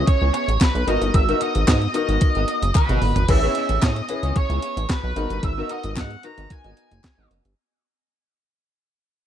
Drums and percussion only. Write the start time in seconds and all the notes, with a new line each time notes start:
0.07 kick, closed hi-hat
0.34 closed hi-hat
0.49 closed hi-hat
0.61 kick, snare, clap, closed hi-hat
0.75 closed hi-hat
0.88 closed hi-hat
1.02 closed hi-hat
1.14 kick, closed hi-hat
1.29 closed hi-hat
1.41 closed hi-hat
1.55 closed hi-hat
1.68 kick, snare, clap, closed hi-hat
1.82 closed hi-hat
1.94 closed hi-hat
2.09 closed hi-hat
2.21 kick, closed hi-hat
2.35 closed hi-hat
2.48 closed hi-hat
2.63 closed hi-hat
2.75 kick, clap, closed hi-hat, high tom
2.89 closed hi-hat, mid tom
3.02 mid tom, open hi-hat
3.16 closed hi-hat, floor tom
3.28 kick, closed hi-hat, crash
3.55 closed hi-hat
3.69 closed hi-hat
3.82 kick, snare, clap, closed hi-hat
3.96 closed hi-hat
4.09 closed hi-hat
4.23 closed hi-hat
4.36 kick, closed hi-hat
4.50 closed hi-hat
4.62 closed hi-hat
4.77 closed hi-hat
4.89 kick, snare, clap, closed hi-hat
5.16 closed hi-hat
5.30 closed hi-hat
5.43 kick, closed hi-hat
5.69 closed hi-hat
5.84 closed hi-hat
5.96 kick, snare, clap, closed hi-hat
6.11 closed hi-hat
6.23 closed hi-hat
6.38 closed hi-hat
6.50 kick, closed hi-hat
6.64 closed hi-hat
6.77 closed hi-hat
6.91 closed hi-hat
7.04 kick, snare, clap, closed hi-hat
7.31 closed hi-hat
7.45 closed hi-hat